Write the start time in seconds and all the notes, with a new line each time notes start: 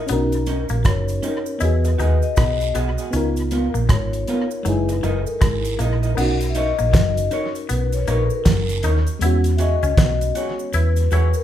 Already playing: D#4 E4 G#4 A#4
0.07 B1 B3 C#4 D4 F#4, closed hi-hat, cabasa
0.13 D#4 A#4
0.32 closed hi-hat, cabasa
0.46 C#4 D#4 A#4, closed hi-hat, cabasa
0.69 A#1 A#3, closed hi-hat, cabasa
0.84 F#1 F#3 C#5, kick, cross-stick, closed hi-hat, cabasa
1.08 closed hi-hat, cabasa
1.23 C#4 D#4 A#4, closed hi-hat, cabasa
1.46 cabasa
1.59 E2 B3 E4 B4 D#5, closed hi-hat, cabasa
1.63 F#4 G#4
1.85 muted clean electric guitar stroke, closed hi-hat, cabasa
1.98 D#2 D#4 F#4 G#4 B4 D#5, closed hi-hat, cabasa
2.22 D#5, closed hi-hat, cabasa
2.36 B1 B3, kick, cross-stick, closed hi-hat, cabasa, long guiro
2.60 closed hi-hat, cabasa
2.75 B1 B3 F#4 G#4 D#5, closed hi-hat, cabasa
2.98 F#4 G#4 D#5, closed hi-hat, cabasa
3.11 C#2 B3 C#4 D#4, closed hi-hat, cabasa
3.15 F4 A#4
3.36 closed hi-hat, cabasa
3.51 B3 F4 A#4, closed hi-hat, cabasa
3.74 A#1 A#3, cabasa
3.89 G#1 G#3 C#5, kick, cross-stick, closed hi-hat, cabasa
4.13 closed hi-hat, cabasa
4.28 B3 F4 A#4, closed hi-hat, cabasa
4.51 cabasa
4.63 F#1 F#3 G#3 D#4 E4 B4, closed hi-hat, cabasa
4.69 G#4
4.89 muted clean electric guitar stroke, closed hi-hat, cabasa
5.03 F#1 F#3 E4 A#4 D#5, closed hi-hat, cabasa
5.18 A4
5.27 A#4, cabasa
5.41 G#1 G#3, kick, cross-stick, closed hi-hat, cabasa, long guiro
5.65 closed hi-hat, cabasa
5.79 A#1 A#3 E4 A#4 D#5, closed hi-hat, cabasa
6.03 E4 A#4 D#5, closed hi-hat, cabasa
6.15 B1 B3 C#4 D#4 A#4 F#5, crash, cabasa
6.21 F#4
6.41 closed hi-hat, cabasa
6.49 E5
6.54 D#4 A#4 C#5 D#5, closed hi-hat, cabasa
6.79 A#1 A#3, cabasa
6.93 F#1 F#3, kick, snare, closed hi-hat, cabasa
7.17 closed hi-hat, cabasa
7.31 D#4 A#4 C#5, closed hi-hat, cabasa
7.55 closed hi-hat, cabasa
7.69 B1 B3 B4, closed hi-hat, cabasa
7.92 C#5, closed hi-hat, cabasa
8.01 B4
8.07 A#1 A#3 D#4 A#4 C#5, closed hi-hat, cabasa
8.21 A4 B4
8.30 cabasa
8.34 A#4
8.45 F#1 F#3, kick, snare, closed hi-hat, cabasa, long guiro
8.69 closed hi-hat, cabasa
8.83 D#2 D#4 A#4 C#5, closed hi-hat, cabasa
9.06 closed hi-hat, cabasa
9.19 E2 G#3 B3 E4 F#5, closed hi-hat, cabasa
9.24 C#4 F#4
9.44 closed hi-hat, cabasa
9.57 F#4 G#4 C#5 D#5 E5, closed hi-hat, cabasa
9.83 C#2 C#4, closed hi-hat, cabasa
9.97 B1 B3, kick, snare, closed hi-hat, cabasa
10.21 closed hi-hat, cabasa
10.35 F#4 G#4 C#5, closed hi-hat, cabasa
10.59 cabasa
10.73 E2 E4 B4, closed hi-hat, cabasa
10.96 closed hi-hat, cabasa
11.11 E2 E4 F#4 G#4 C#5, closed hi-hat, cabasa
11.34 A#4, cabasa